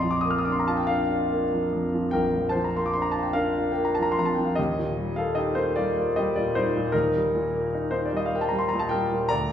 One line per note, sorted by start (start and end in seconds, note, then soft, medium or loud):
0.00 2.06 A#1 medium
0.00 0.16 F2 soft
0.00 4.60 D5 medium
0.00 0.11 D#5 medium
0.00 0.60 A#5 medium
0.00 0.12 C6 medium
0.04 0.38 F3 soft
0.11 0.22 D6 medium
0.21 0.31 D#6 medium
0.25 0.59 A#3 soft
0.31 0.39 F6 medium
0.38 0.46 D#6 medium
0.45 0.81 D4 soft
0.45 0.53 D6 medium
0.52 0.61 C6 medium
0.60 0.69 A#5 medium
0.68 1.02 F4 soft
0.68 0.78 A5 medium
0.77 0.88 G5 medium
0.87 1.23 D4 medium
0.87 2.09 A#4 medium
0.87 2.12 F5 medium
1.11 1.44 F4 medium
1.32 1.65 A#3 medium
1.54 1.86 F3 soft
1.73 2.05 F2 medium
1.94 2.26 F3 medium
2.11 4.54 A#1 soft
2.11 2.48 A#4 medium
2.11 2.49 G5 medium
2.35 2.67 F2 soft
2.49 2.65 C5 medium
2.49 2.66 A5 medium
2.55 2.88 F3 soft
2.64 2.77 A#5 medium
2.77 3.09 A#3 soft
2.77 2.87 C6 medium
2.86 2.95 D6 medium
2.93 3.30 D4 soft
2.93 3.03 C6 medium
3.02 3.13 A#5 medium
3.11 3.24 A5 medium
3.16 3.50 F4 soft
3.23 3.36 G5 medium
3.33 3.69 D4 medium
3.33 3.70 A#4 medium
3.33 3.72 F5 medium
3.58 3.90 F4 soft
3.72 3.87 A#4 soft
3.72 3.87 G5 medium
3.78 4.10 A#3 medium
3.85 3.97 A#5 medium
3.95 4.06 A5 medium
3.99 4.31 F3 medium
3.99 4.13 A#5 medium
4.12 4.21 C6 medium
4.19 4.50 F2 soft
4.19 4.28 A#5 medium
4.25 4.36 A5 medium
4.35 4.58 F3 medium
4.35 4.46 G5 medium
4.45 4.56 F5 medium
4.55 6.90 D#2 medium
4.55 5.13 G4 medium
4.55 5.16 D#5 medium
4.78 5.10 A#2 soft
4.99 5.30 G3 medium
5.16 5.49 A#3 medium
5.16 5.36 A4 medium
5.16 5.37 F5 medium
5.35 5.54 D#4 soft
5.35 5.55 G4 medium
5.35 5.56 D#5 medium
5.55 5.88 A#3 medium
5.55 5.75 D#4 medium
5.55 5.76 C5 medium
5.76 6.09 G3 soft
5.76 6.13 F4 medium
5.76 6.15 D5 medium
5.98 6.28 A#3 medium
6.16 6.48 G3 medium
6.16 6.35 G4 medium
6.16 6.36 D#5 medium
6.36 6.67 A#2 soft
6.36 6.54 F4 medium
6.36 6.55 D5 medium
6.55 6.87 G3 medium
6.55 6.91 D#4 medium
6.55 6.93 C5 medium
6.77 7.06 A#2 medium
6.92 9.27 D#2 medium
6.92 7.73 D#4 medium
6.92 7.90 A#4 medium
7.15 7.45 G3 soft
7.35 7.65 A#2 soft
7.55 7.85 A#3 soft
7.75 7.90 D#4 medium
7.91 8.23 A#3 medium
7.91 8.05 D#4 medium
7.91 8.06 C5 medium
8.05 8.17 D5 medium
8.13 8.43 G3 soft
8.13 8.27 D#5 medium
8.26 8.35 F5 medium
8.33 8.63 A#3 soft
8.33 8.43 G5 medium
8.41 8.50 A5 medium
8.49 8.83 G3 medium
8.49 8.58 A#5 medium
8.58 8.68 C6 medium
8.69 8.79 A#5 medium
8.74 9.04 A#2 medium
8.79 8.90 A5 medium
8.89 9.23 G3 medium
8.89 9.27 A#4 medium
8.89 9.29 G5 medium
9.12 9.31 A#2 medium
9.29 9.52 D2 medium
9.29 9.52 D5 medium
9.29 9.52 A#5 loud